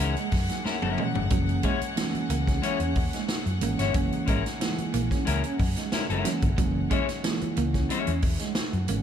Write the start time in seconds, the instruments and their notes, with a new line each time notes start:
Already playing: tine electric piano E3 G#3 A#3 D#4, string section A#3 G#4 F#5
0.00 fingered electric bass C#2, clean electric guitar G#3 C#4 E4 A#4, closed hi-hat
0.16 clean electric guitar G#3, closed hi-hat
0.32 fingered electric bass F#2, muted clean electric guitar stroke, kick, snare, open hi-hat
0.49 clean electric guitar F#3, snare, closed hi-hat
0.64 clean electric guitar G#3 C#4 E4 A#4, muted fingered electric bass stroke, snare
0.82 fingered electric bass F#1, clean electric guitar G#3 C#4 E4 A#4, high tom
0.97 tine electric piano E3 G#3 A#3 C#4, clean electric guitar G#3, mid tom
1.15 fingered electric bass G1, floor tom
1.30 fingered electric bass F#1, tine electric piano E3 G#3 A#3 C#4, clean electric guitar F#3, kick, closed hi-hat
1.49 muted clean electric guitar stroke, closed hi-hat
1.63 clean electric guitar G#3 C#4 E4 C#5, kick, closed hi-hat
1.81 muted fingered electric bass stroke, closed hi-hat
1.96 tine electric piano E3 G#3 A3 C#4, muted clean electric guitar stroke, snare, closed hi-hat
2.03 tine electric piano A#3
2.14 muted fingered electric bass stroke, closed hi-hat
2.29 fingered electric bass C#2, clean electric guitar A#3, closed hi-hat
2.47 clean electric guitar C#4, kick, snare, closed hi-hat
2.62 clean electric guitar G#3 C#4 E4 C#5, muted fingered electric bass stroke, closed hi-hat
2.80 fingered electric bass E2, clean electric guitar C#4, closed hi-hat
2.95 muted clean electric guitar stroke, kick, open hi-hat
3.13 clean electric guitar G#3, snare, closed hi-hat
3.29 muted clean electric guitar stroke, snare, closed hi-hat
3.46 fingered electric bass F#2, closed hi-hat
3.61 fingered electric bass G#1, tine electric piano E3 G#3 A#3 C#4, clean electric guitar A#3, closed hi-hat
3.79 fingered electric bass G1, clean electric guitar G#3 C#4 E4 C#5, snare, closed hi-hat
3.94 fingered electric bass F#1, tine electric piano E3 G#3 A#3 C#4, clean electric guitar C#4, kick, closed hi-hat
4.12 muted clean electric guitar stroke, closed hi-hat
4.26 fingered electric bass G#1, clean electric guitar G#3 C#4 E4 A#4, kick, closed hi-hat
4.46 snare, closed hi-hat
4.60 tine electric piano E3 G#3 A#3 E4, muted clean electric guitar stroke, snare, closed hi-hat
4.78 muted fingered electric bass stroke, closed hi-hat
4.94 fingered electric bass A#1, clean electric guitar A#3, closed hi-hat
5.11 clean electric guitar C#4, kick, snare, closed hi-hat
5.25 fingered electric bass C#2, clean electric guitar G#3 C#4 E4 A#4, closed hi-hat
5.44 clean electric guitar C#4, closed hi-hat
5.59 fingered electric bass F#2, muted clean electric guitar stroke, kick, open hi-hat
5.76 clean electric guitar G#3, snare, closed hi-hat
5.92 clean electric guitar G#3 C#4 E4 A#4, muted fingered electric bass stroke, snare, closed hi-hat
6.10 fingered electric bass F#1, clean electric guitar G#3 C#4 E4 A#4, closed hi-hat
6.24 tine electric piano E3 G#3 A#3 C#4, clean electric guitar F#3, snare, closed hi-hat
6.42 fingered electric bass G1, kick, closed hi-hat
6.58 fingered electric bass F#1, tine electric piano E3 G#3 A#3 C#4, clean electric guitar F#3, kick, closed hi-hat
6.75 muted clean electric guitar stroke
6.90 clean electric guitar G#3 C#4 E4 C#5, kick, closed hi-hat
7.08 muted fingered electric bass stroke, snare, closed hi-hat
7.23 tine electric piano E3 G#3 A#3 E4, muted clean electric guitar stroke, snare, closed hi-hat
7.41 muted fingered electric bass stroke, closed hi-hat
7.57 fingered electric bass C#2, clean electric guitar A#3, closed hi-hat
7.74 clean electric guitar C#4, kick, snare, closed hi-hat
7.89 clean electric guitar G#3 C#4 E4 C#5, muted fingered electric bass stroke, closed hi-hat
8.07 fingered electric bass E2, clean electric guitar C#4, closed hi-hat
8.22 muted clean electric guitar stroke, kick, open hi-hat
8.39 clean electric guitar G#3, snare, closed hi-hat
8.55 muted clean electric guitar stroke, snare, closed hi-hat
8.73 fingered electric bass F#2, closed hi-hat
8.88 fingered electric bass G#1, tine electric piano E3 G#3 A#3 C#4, clean electric guitar A#3, closed hi-hat